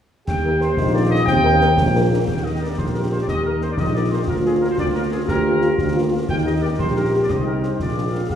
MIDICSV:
0, 0, Header, 1, 8, 480
1, 0, Start_track
1, 0, Key_signature, -3, "major"
1, 0, Tempo, 334262
1, 396, Time_signature, 6, 3, 24, 8
1, 11996, End_track
2, 0, Start_track
2, 0, Title_t, "Trumpet section"
2, 0, Program_c, 0, 61
2, 399, Note_on_c, 0, 79, 92
2, 843, Note_off_c, 0, 79, 0
2, 885, Note_on_c, 0, 72, 82
2, 1326, Note_off_c, 0, 72, 0
2, 1348, Note_on_c, 0, 74, 80
2, 1578, Note_on_c, 0, 75, 107
2, 1591, Note_off_c, 0, 74, 0
2, 1808, Note_off_c, 0, 75, 0
2, 1810, Note_on_c, 0, 79, 127
2, 2962, Note_off_c, 0, 79, 0
2, 3257, Note_on_c, 0, 79, 78
2, 3486, Note_off_c, 0, 79, 0
2, 3504, Note_on_c, 0, 75, 70
2, 3737, Note_on_c, 0, 74, 69
2, 3746, Note_off_c, 0, 75, 0
2, 3983, Note_off_c, 0, 74, 0
2, 3985, Note_on_c, 0, 72, 73
2, 4094, Note_off_c, 0, 72, 0
2, 4217, Note_on_c, 0, 70, 66
2, 4327, Note_off_c, 0, 70, 0
2, 4457, Note_on_c, 0, 72, 64
2, 4574, Note_off_c, 0, 72, 0
2, 4598, Note_on_c, 0, 74, 61
2, 4650, Note_off_c, 0, 74, 0
2, 4718, Note_on_c, 0, 75, 86
2, 4937, Note_off_c, 0, 75, 0
2, 4943, Note_on_c, 0, 70, 70
2, 5168, Note_off_c, 0, 70, 0
2, 5191, Note_on_c, 0, 72, 67
2, 5301, Note_off_c, 0, 72, 0
2, 5342, Note_on_c, 0, 74, 70
2, 5432, Note_on_c, 0, 75, 78
2, 5438, Note_off_c, 0, 74, 0
2, 5653, Note_off_c, 0, 75, 0
2, 5668, Note_on_c, 0, 74, 77
2, 5908, Note_off_c, 0, 74, 0
2, 5908, Note_on_c, 0, 72, 69
2, 6016, Note_off_c, 0, 72, 0
2, 6151, Note_on_c, 0, 70, 83
2, 6258, Note_off_c, 0, 70, 0
2, 6395, Note_on_c, 0, 68, 74
2, 6502, Note_off_c, 0, 68, 0
2, 6624, Note_on_c, 0, 70, 69
2, 6738, Note_off_c, 0, 70, 0
2, 6755, Note_on_c, 0, 72, 83
2, 6863, Note_off_c, 0, 72, 0
2, 6866, Note_on_c, 0, 74, 98
2, 6974, Note_off_c, 0, 74, 0
2, 7112, Note_on_c, 0, 70, 87
2, 7219, Note_off_c, 0, 70, 0
2, 7340, Note_on_c, 0, 68, 76
2, 7450, Note_off_c, 0, 68, 0
2, 7574, Note_on_c, 0, 70, 98
2, 8725, Note_off_c, 0, 70, 0
2, 9023, Note_on_c, 0, 79, 107
2, 9132, Note_off_c, 0, 79, 0
2, 9254, Note_on_c, 0, 75, 84
2, 9366, Note_off_c, 0, 75, 0
2, 9490, Note_on_c, 0, 74, 81
2, 9603, Note_off_c, 0, 74, 0
2, 9750, Note_on_c, 0, 72, 90
2, 9974, Note_off_c, 0, 72, 0
2, 9991, Note_on_c, 0, 70, 79
2, 10215, Note_off_c, 0, 70, 0
2, 10241, Note_on_c, 0, 72, 70
2, 10357, Note_off_c, 0, 72, 0
2, 10372, Note_on_c, 0, 74, 70
2, 10463, Note_on_c, 0, 75, 83
2, 10474, Note_off_c, 0, 74, 0
2, 10708, Note_off_c, 0, 75, 0
2, 10719, Note_on_c, 0, 70, 74
2, 10940, Note_off_c, 0, 70, 0
2, 10964, Note_on_c, 0, 72, 60
2, 11199, Note_off_c, 0, 72, 0
2, 11205, Note_on_c, 0, 74, 69
2, 11647, Note_off_c, 0, 74, 0
2, 11676, Note_on_c, 0, 77, 64
2, 11904, Note_off_c, 0, 77, 0
2, 11921, Note_on_c, 0, 77, 64
2, 11996, Note_off_c, 0, 77, 0
2, 11996, End_track
3, 0, Start_track
3, 0, Title_t, "Woodwind section"
3, 0, Program_c, 1, 71
3, 404, Note_on_c, 1, 79, 85
3, 846, Note_off_c, 1, 79, 0
3, 874, Note_on_c, 1, 72, 74
3, 1320, Note_off_c, 1, 72, 0
3, 1363, Note_on_c, 1, 74, 74
3, 1468, Note_off_c, 1, 74, 0
3, 1591, Note_on_c, 1, 75, 89
3, 1815, Note_off_c, 1, 75, 0
3, 1832, Note_on_c, 1, 79, 102
3, 2973, Note_off_c, 1, 79, 0
3, 3277, Note_on_c, 1, 70, 52
3, 6094, Note_off_c, 1, 70, 0
3, 6152, Note_on_c, 1, 70, 61
3, 6153, Note_on_c, 1, 65, 62
3, 8975, Note_off_c, 1, 65, 0
3, 8975, Note_off_c, 1, 70, 0
3, 9037, Note_on_c, 1, 70, 62
3, 9044, Note_on_c, 1, 67, 66
3, 10418, Note_off_c, 1, 70, 0
3, 10485, Note_on_c, 1, 72, 59
3, 11200, Note_off_c, 1, 72, 0
3, 11201, Note_off_c, 1, 67, 0
3, 11202, Note_on_c, 1, 70, 52
3, 11203, Note_on_c, 1, 68, 50
3, 11898, Note_off_c, 1, 70, 0
3, 11915, Note_on_c, 1, 70, 46
3, 11919, Note_on_c, 1, 67, 46
3, 11920, Note_off_c, 1, 68, 0
3, 11996, Note_off_c, 1, 67, 0
3, 11996, Note_off_c, 1, 70, 0
3, 11996, End_track
4, 0, Start_track
4, 0, Title_t, "Euphonium"
4, 0, Program_c, 2, 58
4, 393, Note_on_c, 2, 67, 80
4, 1063, Note_off_c, 2, 67, 0
4, 1121, Note_on_c, 2, 63, 77
4, 1786, Note_off_c, 2, 63, 0
4, 1829, Note_on_c, 2, 60, 104
4, 2562, Note_on_c, 2, 58, 79
4, 2583, Note_off_c, 2, 60, 0
4, 2916, Note_off_c, 2, 58, 0
4, 3993, Note_on_c, 2, 67, 56
4, 5373, Note_off_c, 2, 67, 0
4, 5415, Note_on_c, 2, 63, 54
4, 6091, Note_off_c, 2, 63, 0
4, 6141, Note_on_c, 2, 65, 82
4, 7528, Note_off_c, 2, 65, 0
4, 7573, Note_on_c, 2, 67, 81
4, 8305, Note_on_c, 2, 65, 71
4, 8326, Note_off_c, 2, 67, 0
4, 9021, Note_on_c, 2, 63, 73
4, 9042, Note_off_c, 2, 65, 0
4, 9746, Note_off_c, 2, 63, 0
4, 9765, Note_on_c, 2, 67, 71
4, 10429, Note_off_c, 2, 67, 0
4, 10488, Note_on_c, 2, 63, 65
4, 11215, Note_on_c, 2, 65, 53
4, 11237, Note_off_c, 2, 63, 0
4, 11921, Note_off_c, 2, 65, 0
4, 11929, Note_on_c, 2, 67, 53
4, 11996, Note_off_c, 2, 67, 0
4, 11996, End_track
5, 0, Start_track
5, 0, Title_t, "French horn section"
5, 0, Program_c, 3, 60
5, 628, Note_on_c, 3, 58, 57
5, 628, Note_on_c, 3, 63, 58
5, 630, Note_on_c, 3, 70, 53
5, 716, Note_off_c, 3, 58, 0
5, 716, Note_off_c, 3, 63, 0
5, 717, Note_off_c, 3, 70, 0
5, 858, Note_on_c, 3, 58, 54
5, 859, Note_on_c, 3, 63, 59
5, 862, Note_on_c, 3, 70, 61
5, 948, Note_off_c, 3, 58, 0
5, 949, Note_off_c, 3, 63, 0
5, 951, Note_off_c, 3, 70, 0
5, 1340, Note_on_c, 3, 58, 67
5, 1341, Note_on_c, 3, 63, 65
5, 1343, Note_on_c, 3, 70, 62
5, 1430, Note_off_c, 3, 58, 0
5, 1430, Note_off_c, 3, 63, 0
5, 1432, Note_off_c, 3, 70, 0
5, 1582, Note_on_c, 3, 58, 67
5, 1584, Note_on_c, 3, 70, 66
5, 1585, Note_on_c, 3, 63, 65
5, 1670, Note_off_c, 3, 58, 0
5, 1672, Note_off_c, 3, 70, 0
5, 1673, Note_off_c, 3, 63, 0
5, 2065, Note_on_c, 3, 70, 82
5, 2067, Note_on_c, 3, 58, 85
5, 2067, Note_on_c, 3, 63, 82
5, 2153, Note_off_c, 3, 70, 0
5, 2154, Note_off_c, 3, 58, 0
5, 2155, Note_off_c, 3, 63, 0
5, 2307, Note_on_c, 3, 70, 84
5, 2310, Note_on_c, 3, 63, 83
5, 2311, Note_on_c, 3, 58, 82
5, 2394, Note_off_c, 3, 70, 0
5, 2397, Note_off_c, 3, 63, 0
5, 2398, Note_off_c, 3, 58, 0
5, 2794, Note_on_c, 3, 58, 71
5, 2794, Note_on_c, 3, 63, 78
5, 2799, Note_on_c, 3, 70, 79
5, 2879, Note_off_c, 3, 63, 0
5, 2880, Note_off_c, 3, 58, 0
5, 2883, Note_off_c, 3, 70, 0
5, 3032, Note_on_c, 3, 58, 64
5, 3033, Note_on_c, 3, 70, 61
5, 3034, Note_on_c, 3, 63, 63
5, 3118, Note_off_c, 3, 58, 0
5, 3118, Note_off_c, 3, 70, 0
5, 3119, Note_off_c, 3, 63, 0
5, 3510, Note_on_c, 3, 58, 41
5, 3513, Note_on_c, 3, 63, 46
5, 3513, Note_on_c, 3, 70, 43
5, 3596, Note_off_c, 3, 58, 0
5, 3598, Note_off_c, 3, 70, 0
5, 3599, Note_off_c, 3, 63, 0
5, 3749, Note_on_c, 3, 70, 41
5, 3752, Note_on_c, 3, 58, 41
5, 3754, Note_on_c, 3, 63, 45
5, 3835, Note_off_c, 3, 70, 0
5, 3838, Note_off_c, 3, 58, 0
5, 3840, Note_off_c, 3, 63, 0
5, 4229, Note_on_c, 3, 70, 48
5, 4230, Note_on_c, 3, 63, 45
5, 4234, Note_on_c, 3, 58, 47
5, 4316, Note_off_c, 3, 63, 0
5, 4316, Note_off_c, 3, 70, 0
5, 4319, Note_off_c, 3, 58, 0
5, 4462, Note_on_c, 3, 63, 45
5, 4464, Note_on_c, 3, 58, 44
5, 4464, Note_on_c, 3, 70, 47
5, 4550, Note_off_c, 3, 63, 0
5, 4551, Note_off_c, 3, 58, 0
5, 4551, Note_off_c, 3, 70, 0
5, 4938, Note_on_c, 3, 58, 50
5, 4939, Note_on_c, 3, 63, 45
5, 4944, Note_on_c, 3, 70, 47
5, 5027, Note_off_c, 3, 58, 0
5, 5027, Note_off_c, 3, 63, 0
5, 5031, Note_off_c, 3, 70, 0
5, 5184, Note_on_c, 3, 70, 47
5, 5185, Note_on_c, 3, 63, 48
5, 5187, Note_on_c, 3, 58, 46
5, 5272, Note_off_c, 3, 63, 0
5, 5272, Note_off_c, 3, 70, 0
5, 5274, Note_off_c, 3, 58, 0
5, 5663, Note_on_c, 3, 63, 52
5, 5665, Note_on_c, 3, 58, 49
5, 5668, Note_on_c, 3, 70, 51
5, 5751, Note_off_c, 3, 63, 0
5, 5752, Note_off_c, 3, 58, 0
5, 5755, Note_off_c, 3, 70, 0
5, 5902, Note_on_c, 3, 58, 51
5, 5902, Note_on_c, 3, 63, 49
5, 5903, Note_on_c, 3, 70, 52
5, 5990, Note_off_c, 3, 58, 0
5, 5990, Note_off_c, 3, 63, 0
5, 5991, Note_off_c, 3, 70, 0
5, 6384, Note_on_c, 3, 65, 52
5, 6386, Note_on_c, 3, 58, 53
5, 6387, Note_off_c, 3, 65, 0
5, 6387, Note_on_c, 3, 65, 56
5, 6473, Note_off_c, 3, 58, 0
5, 6474, Note_off_c, 3, 65, 0
5, 6613, Note_on_c, 3, 65, 59
5, 6615, Note_on_c, 3, 58, 53
5, 6620, Note_off_c, 3, 65, 0
5, 6620, Note_on_c, 3, 65, 58
5, 6704, Note_off_c, 3, 58, 0
5, 6708, Note_off_c, 3, 65, 0
5, 7109, Note_on_c, 3, 58, 55
5, 7110, Note_on_c, 3, 65, 56
5, 7113, Note_off_c, 3, 65, 0
5, 7113, Note_on_c, 3, 65, 58
5, 7195, Note_off_c, 3, 58, 0
5, 7198, Note_off_c, 3, 65, 0
5, 7340, Note_on_c, 3, 65, 60
5, 7341, Note_off_c, 3, 65, 0
5, 7341, Note_on_c, 3, 65, 52
5, 7342, Note_on_c, 3, 58, 56
5, 7429, Note_off_c, 3, 65, 0
5, 7430, Note_off_c, 3, 58, 0
5, 7826, Note_on_c, 3, 58, 60
5, 7829, Note_on_c, 3, 65, 64
5, 7834, Note_off_c, 3, 65, 0
5, 7834, Note_on_c, 3, 65, 57
5, 7913, Note_off_c, 3, 58, 0
5, 7919, Note_off_c, 3, 65, 0
5, 8059, Note_on_c, 3, 65, 58
5, 8061, Note_on_c, 3, 58, 60
5, 8064, Note_off_c, 3, 65, 0
5, 8064, Note_on_c, 3, 65, 57
5, 8149, Note_off_c, 3, 58, 0
5, 8152, Note_off_c, 3, 65, 0
5, 8542, Note_on_c, 3, 65, 57
5, 8544, Note_on_c, 3, 58, 59
5, 8630, Note_off_c, 3, 65, 0
5, 8632, Note_off_c, 3, 58, 0
5, 8780, Note_on_c, 3, 65, 56
5, 8783, Note_off_c, 3, 65, 0
5, 8783, Note_on_c, 3, 65, 57
5, 8787, Note_on_c, 3, 58, 60
5, 8871, Note_off_c, 3, 65, 0
5, 8874, Note_off_c, 3, 58, 0
5, 9263, Note_on_c, 3, 58, 60
5, 9266, Note_on_c, 3, 67, 58
5, 9269, Note_on_c, 3, 63, 58
5, 9351, Note_off_c, 3, 58, 0
5, 9353, Note_off_c, 3, 67, 0
5, 9356, Note_off_c, 3, 63, 0
5, 9504, Note_on_c, 3, 67, 54
5, 9506, Note_on_c, 3, 58, 57
5, 9509, Note_on_c, 3, 63, 56
5, 9592, Note_off_c, 3, 67, 0
5, 9593, Note_off_c, 3, 58, 0
5, 9596, Note_off_c, 3, 63, 0
5, 9987, Note_on_c, 3, 58, 53
5, 9988, Note_on_c, 3, 63, 57
5, 9988, Note_on_c, 3, 67, 52
5, 10075, Note_off_c, 3, 58, 0
5, 10075, Note_off_c, 3, 63, 0
5, 10075, Note_off_c, 3, 67, 0
5, 10218, Note_on_c, 3, 58, 51
5, 10218, Note_on_c, 3, 67, 53
5, 10219, Note_on_c, 3, 63, 52
5, 10308, Note_off_c, 3, 58, 0
5, 10308, Note_off_c, 3, 67, 0
5, 10309, Note_off_c, 3, 63, 0
5, 10706, Note_on_c, 3, 63, 49
5, 10706, Note_on_c, 3, 67, 52
5, 10709, Note_on_c, 3, 60, 51
5, 10794, Note_off_c, 3, 63, 0
5, 10794, Note_off_c, 3, 67, 0
5, 10796, Note_off_c, 3, 60, 0
5, 10945, Note_on_c, 3, 60, 45
5, 10950, Note_on_c, 3, 67, 51
5, 10952, Note_on_c, 3, 63, 49
5, 11034, Note_off_c, 3, 60, 0
5, 11037, Note_off_c, 3, 67, 0
5, 11039, Note_off_c, 3, 63, 0
5, 11425, Note_on_c, 3, 56, 43
5, 11427, Note_on_c, 3, 70, 43
5, 11430, Note_on_c, 3, 65, 43
5, 11514, Note_off_c, 3, 56, 0
5, 11515, Note_off_c, 3, 70, 0
5, 11517, Note_off_c, 3, 65, 0
5, 11661, Note_on_c, 3, 56, 38
5, 11664, Note_on_c, 3, 65, 39
5, 11666, Note_on_c, 3, 70, 40
5, 11750, Note_off_c, 3, 56, 0
5, 11753, Note_off_c, 3, 65, 0
5, 11754, Note_off_c, 3, 70, 0
5, 11996, End_track
6, 0, Start_track
6, 0, Title_t, "Trombone section"
6, 0, Program_c, 4, 61
6, 376, Note_on_c, 4, 58, 65
6, 381, Note_on_c, 4, 51, 63
6, 2963, Note_off_c, 4, 58, 0
6, 2965, Note_off_c, 4, 51, 0
6, 11996, End_track
7, 0, Start_track
7, 0, Title_t, "Tuba"
7, 0, Program_c, 5, 58
7, 404, Note_on_c, 5, 39, 72
7, 998, Note_off_c, 5, 39, 0
7, 1117, Note_on_c, 5, 34, 84
7, 1714, Note_off_c, 5, 34, 0
7, 1837, Note_on_c, 5, 39, 99
7, 2434, Note_off_c, 5, 39, 0
7, 2552, Note_on_c, 5, 34, 94
7, 3151, Note_off_c, 5, 34, 0
7, 3272, Note_on_c, 5, 39, 60
7, 3870, Note_off_c, 5, 39, 0
7, 3993, Note_on_c, 5, 34, 59
7, 4590, Note_off_c, 5, 34, 0
7, 4704, Note_on_c, 5, 39, 57
7, 5306, Note_off_c, 5, 39, 0
7, 5424, Note_on_c, 5, 34, 68
7, 6026, Note_off_c, 5, 34, 0
7, 6149, Note_on_c, 5, 38, 66
7, 6748, Note_off_c, 5, 38, 0
7, 6871, Note_on_c, 5, 38, 68
7, 7470, Note_off_c, 5, 38, 0
7, 7587, Note_on_c, 5, 38, 75
7, 8188, Note_off_c, 5, 38, 0
7, 8305, Note_on_c, 5, 38, 73
7, 8907, Note_off_c, 5, 38, 0
7, 9025, Note_on_c, 5, 39, 76
7, 9572, Note_off_c, 5, 39, 0
7, 9753, Note_on_c, 5, 34, 70
7, 10353, Note_off_c, 5, 34, 0
7, 10478, Note_on_c, 5, 36, 61
7, 11076, Note_off_c, 5, 36, 0
7, 11202, Note_on_c, 5, 34, 54
7, 11798, Note_off_c, 5, 34, 0
7, 11920, Note_on_c, 5, 39, 47
7, 11996, Note_off_c, 5, 39, 0
7, 11996, End_track
8, 0, Start_track
8, 0, Title_t, "Drums"
8, 395, Note_on_c, 9, 35, 71
8, 395, Note_on_c, 9, 38, 67
8, 395, Note_on_c, 9, 49, 44
8, 539, Note_off_c, 9, 35, 0
8, 539, Note_off_c, 9, 38, 0
8, 539, Note_off_c, 9, 49, 0
8, 874, Note_on_c, 9, 38, 49
8, 1017, Note_off_c, 9, 38, 0
8, 1109, Note_on_c, 9, 35, 81
8, 1109, Note_on_c, 9, 38, 66
8, 1253, Note_off_c, 9, 35, 0
8, 1253, Note_off_c, 9, 38, 0
8, 1825, Note_on_c, 9, 35, 78
8, 1825, Note_on_c, 9, 38, 73
8, 1968, Note_off_c, 9, 35, 0
8, 1968, Note_off_c, 9, 38, 0
8, 2309, Note_on_c, 9, 38, 58
8, 2453, Note_off_c, 9, 38, 0
8, 2544, Note_on_c, 9, 35, 88
8, 2544, Note_on_c, 9, 38, 73
8, 2688, Note_off_c, 9, 35, 0
8, 2688, Note_off_c, 9, 38, 0
8, 3266, Note_on_c, 9, 35, 68
8, 3266, Note_on_c, 9, 38, 56
8, 3266, Note_on_c, 9, 49, 39
8, 3409, Note_off_c, 9, 35, 0
8, 3409, Note_off_c, 9, 38, 0
8, 3409, Note_off_c, 9, 49, 0
8, 3991, Note_on_c, 9, 35, 71
8, 3991, Note_on_c, 9, 38, 56
8, 4135, Note_off_c, 9, 35, 0
8, 4135, Note_off_c, 9, 38, 0
8, 4710, Note_on_c, 9, 35, 67
8, 4710, Note_on_c, 9, 38, 64
8, 4853, Note_off_c, 9, 35, 0
8, 4853, Note_off_c, 9, 38, 0
8, 5187, Note_on_c, 9, 38, 44
8, 5330, Note_off_c, 9, 38, 0
8, 5419, Note_on_c, 9, 35, 73
8, 5419, Note_on_c, 9, 38, 60
8, 5562, Note_off_c, 9, 35, 0
8, 5562, Note_off_c, 9, 38, 0
8, 6134, Note_on_c, 9, 35, 70
8, 6134, Note_on_c, 9, 38, 51
8, 6278, Note_off_c, 9, 35, 0
8, 6278, Note_off_c, 9, 38, 0
8, 6860, Note_on_c, 9, 35, 66
8, 6860, Note_on_c, 9, 38, 58
8, 7004, Note_off_c, 9, 35, 0
8, 7004, Note_off_c, 9, 38, 0
8, 7585, Note_on_c, 9, 35, 69
8, 7585, Note_on_c, 9, 38, 69
8, 7729, Note_off_c, 9, 35, 0
8, 7729, Note_off_c, 9, 38, 0
8, 8060, Note_on_c, 9, 38, 45
8, 8204, Note_off_c, 9, 38, 0
8, 8304, Note_on_c, 9, 35, 75
8, 8304, Note_on_c, 9, 38, 59
8, 8447, Note_off_c, 9, 35, 0
8, 8447, Note_off_c, 9, 38, 0
8, 9026, Note_on_c, 9, 35, 72
8, 9026, Note_on_c, 9, 38, 54
8, 9026, Note_on_c, 9, 49, 28
8, 9169, Note_off_c, 9, 35, 0
8, 9169, Note_off_c, 9, 38, 0
8, 9169, Note_off_c, 9, 49, 0
8, 9750, Note_on_c, 9, 35, 75
8, 9750, Note_on_c, 9, 38, 59
8, 9893, Note_off_c, 9, 35, 0
8, 9893, Note_off_c, 9, 38, 0
8, 10474, Note_on_c, 9, 35, 67
8, 10474, Note_on_c, 9, 38, 65
8, 10617, Note_off_c, 9, 35, 0
8, 10617, Note_off_c, 9, 38, 0
8, 10955, Note_on_c, 9, 38, 46
8, 11099, Note_off_c, 9, 38, 0
8, 11193, Note_on_c, 9, 35, 65
8, 11193, Note_on_c, 9, 38, 56
8, 11336, Note_off_c, 9, 35, 0
8, 11336, Note_off_c, 9, 38, 0
8, 11914, Note_on_c, 9, 35, 65
8, 11914, Note_on_c, 9, 38, 50
8, 11996, Note_off_c, 9, 35, 0
8, 11996, Note_off_c, 9, 38, 0
8, 11996, End_track
0, 0, End_of_file